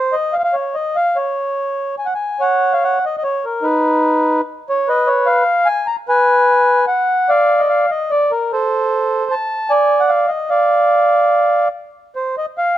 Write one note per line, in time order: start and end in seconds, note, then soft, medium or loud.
0.00 0.16 C5 medium
0.13 0.35 D#5 medium
0.33 0.37 F5 medium
0.38 0.42 F5 medium
0.44 0.55 F5 medium
0.53 0.76 C#5 medium
0.74 0.97 D#5 medium
0.96 1.17 F5 medium
1.16 1.95 C#5 medium
1.99 2.07 G#5 medium
2.06 2.14 F#5 medium
2.15 2.43 G#5 medium
2.40 2.99 C#5 medium
2.40 2.73 F#5 medium
2.73 2.84 F5 medium
2.84 3.05 F#5 medium
3.06 3.16 D#5 medium
3.17 3.23 D#5 medium
3.24 3.45 C#5 medium
3.45 3.66 A#4 medium
3.62 4.41 D#4 medium
3.62 4.41 B4 medium
4.69 4.89 C#5 medium
4.88 5.43 B4 medium
4.88 5.09 D#5 medium
5.07 5.27 C#5 medium
5.26 5.68 F5 medium
5.66 5.87 G#5 loud
5.87 5.96 A#5 medium
6.08 6.85 B4 medium
6.08 6.86 G#5 loud
6.87 7.30 F#5 medium
7.29 7.86 D5 medium
7.29 7.61 F5 medium
7.59 7.69 D#5 medium
7.69 7.90 F5 medium
7.91 8.11 D#5 medium
8.10 8.31 D5 medium
8.31 8.52 A#4 medium
8.52 9.28 A4 medium
8.52 9.35 C5 medium
9.31 9.72 A5 medium
9.69 10.26 D5 medium
9.69 10.01 G#5 loud
10.00 10.11 F#5 medium
10.09 10.30 F5 medium
10.28 10.50 D#5 medium
10.50 11.68 D5 medium
10.50 11.68 F5 medium
12.16 12.36 C5 medium
12.38 12.46 D#5 medium
12.58 12.77 F5 medium